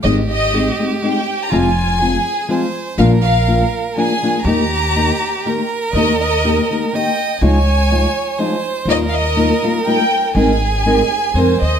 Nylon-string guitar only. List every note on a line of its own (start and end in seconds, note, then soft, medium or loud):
0.04 0.20 G#2 medium
0.04 0.20 D#3 medium
0.04 0.20 G#3 medium
0.04 0.20 C4 medium
0.04 0.20 D#4 medium
0.04 0.20 G#4 medium
0.53 0.69 G#3 soft
0.53 0.69 C4 medium
0.53 0.69 D#4 medium
0.53 0.70 G#4 medium
0.79 0.93 G#3 soft
0.79 0.94 C4 soft
0.79 0.94 D#4 medium
0.79 0.94 G#4 medium
1.02 1.18 G#3 soft
1.02 1.18 C4 medium
1.02 1.19 D#4 medium
1.02 1.19 G#4 medium
1.52 1.67 F2 medium
1.52 1.67 C3 medium
1.52 1.67 F3 medium
1.52 1.68 G#3 medium
1.52 1.68 C4 medium
1.52 1.68 F4 medium
2.00 2.16 F3 medium
2.00 2.17 G#3 medium
2.00 2.17 C4 medium
2.00 2.17 F4 medium
2.48 2.64 F3 medium
2.48 2.64 G#3 medium
2.48 2.65 C4 medium
2.48 2.65 F4 medium
2.98 3.14 A#2 medium
2.98 3.14 F3 medium
2.98 3.14 A#3 medium
2.98 3.14 D4 medium
2.98 3.14 F4 medium
3.47 3.63 F3 medium
3.47 3.63 A#3 medium
3.47 3.63 D4 medium
3.47 3.64 F4 medium
3.96 4.12 F3 medium
3.96 4.12 A#3 medium
3.96 4.12 D4 medium
3.96 4.13 F4 medium
4.23 4.36 F3 soft
4.23 4.37 A#3 soft
4.23 4.37 D4 soft
4.23 4.37 F4 soft
4.46 4.62 D#3 medium
4.46 4.61 A#3 medium
4.46 4.62 D#4 medium
4.46 4.62 G4 medium
4.96 5.11 D#3 medium
4.96 5.11 A#3 medium
4.96 5.11 D#4 medium
4.96 5.11 G4 medium
5.46 5.61 D#3 soft
5.46 5.61 A#3 soft
5.46 5.61 D#4 medium
5.46 5.62 G4 medium
5.95 6.11 D#3 medium
5.95 6.11 A#3 medium
5.95 6.11 D#4 medium
5.95 6.12 G4 medium
6.44 6.60 D#3 medium
6.44 6.60 A#3 medium
6.44 6.61 D#4 medium
6.44 6.61 G4 medium
6.70 6.84 D#3 soft
6.70 6.85 A#3 soft
6.70 6.85 D#4 soft
6.70 6.85 G4 soft
6.93 7.09 D#3 soft
6.93 7.09 A#3 medium
6.93 7.09 D#4 medium
6.93 7.10 G4 medium
7.41 7.57 C#3 medium
7.41 7.57 F3 medium
7.41 7.57 G#3 medium
7.41 7.58 D#4 medium
7.41 7.58 F4 medium
7.90 8.06 F3 soft
7.90 8.06 G#3 medium
7.90 8.06 D#4 medium
7.90 8.07 F4 medium
8.39 8.54 F3 medium
8.39 8.55 G#3 medium
8.39 8.55 D#4 medium
8.39 8.55 F4 medium
8.87 9.03 D#3 medium
8.87 9.03 G3 medium
8.87 9.03 A#3 medium
8.87 9.03 D#4 medium
8.87 9.03 F4 medium
9.36 9.52 G3 medium
9.36 9.52 A#3 medium
9.36 9.52 D#4 medium
9.36 9.53 F4 medium
9.63 9.76 G3 soft
9.63 9.77 A#3 medium
9.63 9.77 D#4 soft
9.63 9.77 F4 medium
9.86 10.02 G3 soft
9.86 10.02 A#3 medium
9.86 10.02 D#4 medium
9.86 10.02 F4 medium
10.35 10.51 G#3 medium
10.35 10.51 C4 medium
10.35 10.51 D#4 medium
10.35 10.51 A#4 medium
10.86 11.01 G#3 medium
10.86 11.01 C4 medium
10.86 11.02 D#4 medium
10.86 11.02 A#4 medium
11.36 11.52 G#3 medium
11.36 11.53 C4 medium
11.36 11.53 D#4 medium
11.36 11.53 A#4 medium